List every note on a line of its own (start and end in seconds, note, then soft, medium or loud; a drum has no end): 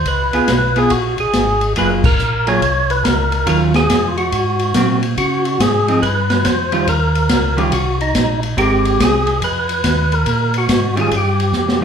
0.06 0.32 C#2 medium
0.06 0.79 B4 loud
0.06 kick soft
0.06 ride medium
0.33 0.41 C#2 soft
0.33 0.47 B3 medium
0.33 0.47 F4 medium
0.33 0.48 G#4 medium
0.33 ride soft
0.48 0.90 B1 medium
0.48 kick soft
0.48 snare medium
0.48 hi-hat pedal soft
0.48 ride medium
0.76 0.90 B3 medium
0.76 0.90 F4 medium
0.76 0.90 G#4 medium
0.76 0.93 G#4 medium
0.76 ride soft
0.90 1.17 A#1 medium
0.90 1.17 F#4 medium
0.90 kick soft
0.90 ride medium
1.18 1.27 A#1 soft
1.18 1.73 G#4 medium
1.18 ride soft
1.33 1.75 G#1 medium
1.33 kick soft
1.33 snare medium
1.33 hi-hat pedal medium
1.33 ride medium
1.61 ride soft
1.76 2.18 F#1 medium
1.76 2.01 F#3 medium
1.76 2.02 A#3 medium
1.76 2.02 F4 medium
1.76 2.02 G#4 medium
1.76 1.90 B4 loud
1.76 kick soft
1.76 ride medium
2.04 2.49 A#4 loud
2.04 kick medium
2.04 crash medium
2.19 2.61 A#1 medium
2.19 hi-hat pedal medium
2.47 2.60 F#3 medium
2.47 2.60 A#3 medium
2.47 2.61 F4 medium
2.47 2.61 G#4 medium
2.47 2.91 C#5 loud
2.47 ride soft
2.62 3.03 C2 medium
2.62 kick soft
2.62 ride medium
2.90 3.05 B4 loud
2.90 ride soft
3.04 3.46 C#2 medium
3.04 3.48 A#4 medium
3.04 kick soft
3.04 snare medium
3.04 hi-hat pedal medium
3.04 ride medium
3.32 ride soft
3.46 3.88 D#2 medium
3.46 3.71 D#3 medium
3.46 3.72 F#3 medium
3.46 3.72 C#4 medium
3.46 3.72 F4 medium
3.46 3.61 A#4 medium
3.46 kick soft
3.46 ride medium
3.74 4.10 G#4 loud
3.74 snare medium
3.74 ride soft
3.89 4.31 F2 medium
3.89 kick soft
3.89 snare medium
3.89 hi-hat pedal medium
3.89 ride medium
4.08 4.17 F4 medium
4.17 4.99 F#4 loud
4.17 ride soft
4.32 4.73 G#2 medium
4.32 kick soft
4.32 ride medium
4.59 ride soft
4.74 5.16 A#2 medium
4.74 5.00 F#3 medium
4.74 5.00 A#3 medium
4.74 5.00 C4 medium
4.74 kick soft
4.74 snare medium
4.74 hi-hat pedal medium
4.74 ride medium
5.03 ride soft
5.17 5.58 C#3 medium
5.17 5.61 F#4 loud
5.17 kick soft
5.17 ride medium
5.45 ride medium
5.60 6.01 G#2 medium
5.60 6.00 G#4 loud
5.60 kick soft
5.60 snare medium
5.60 hi-hat pedal medium
5.60 ride medium
5.88 6.01 F3 medium
5.88 6.02 C4 medium
5.88 6.02 D#4 medium
5.88 ride soft
6.02 6.44 G2 medium
6.02 6.46 B4 medium
6.02 kick soft
6.02 ride medium
6.30 snare medium
6.30 ride soft
6.45 6.86 F2 medium
6.45 6.89 C5 medium
6.45 kick soft
6.45 snare medium
6.45 hi-hat pedal medium
6.45 ride medium
6.72 6.86 D#3 medium
6.72 6.86 G3 medium
6.72 6.86 C#4 medium
6.72 6.86 F4 medium
6.72 ride soft
6.87 7.29 D#2 medium
6.87 7.60 A#4 loud
6.87 kick soft
6.87 ride medium
7.15 ride medium
7.29 7.71 C#2 medium
7.29 kick soft
7.29 snare medium
7.29 hi-hat pedal medium
7.29 ride medium
7.57 7.71 D#3 medium
7.57 7.71 G3 medium
7.57 7.71 C#4 medium
7.57 7.71 F4 medium
7.57 7.73 G4 medium
7.57 ride soft
7.72 8.13 C2 medium
7.72 7.98 F#4 medium
7.72 kick soft
7.72 ride medium
8.01 8.40 D#4 medium
8.01 ride medium
8.14 8.56 A#1 medium
8.14 kick soft
8.14 snare medium
8.14 hi-hat pedal medium
8.14 ride medium
8.43 ride medium
8.57 8.98 G#1 medium
8.57 9.22 G#3 medium
8.57 9.22 C4 medium
8.57 9.22 G4 medium
8.57 9.02 G4 medium
8.57 9.22 A#4 medium
8.57 kick soft
8.57 ride medium
8.85 ride soft
9.00 9.41 C2 medium
9.00 9.40 G#4 loud
9.00 kick soft
9.00 snare medium
9.00 hi-hat pedal medium
9.00 ride medium
9.27 ride soft
9.42 9.83 F2 medium
9.42 10.15 B4 medium
9.42 kick soft
9.42 ride medium
9.69 ride medium
9.84 10.26 D#2 medium
9.84 kick soft
9.84 snare medium
9.84 hi-hat pedal medium
9.84 ride medium
10.12 10.57 A#4 medium
10.12 ride soft
10.26 10.68 A#2 medium
10.26 kick soft
10.26 ride medium
10.54 ride medium
10.58 10.96 F#4 medium
10.69 11.10 G#2 medium
10.69 kick soft
10.69 snare medium
10.69 hi-hat pedal medium
10.69 ride medium
10.96 11.10 D#3 medium
10.96 11.10 G3 medium
10.96 11.10 C#4 medium
10.96 11.11 F4 medium
10.96 ride soft
11.01 11.14 G#4 medium
11.11 11.53 G2 medium
11.11 kick soft
11.11 ride medium
11.17 11.80 G4 medium
11.40 ride soft
11.52 11.84 F2 medium
11.52 snare soft
11.52 hi-hat pedal medium
11.68 snare medium
11.81 11.84 D#3 medium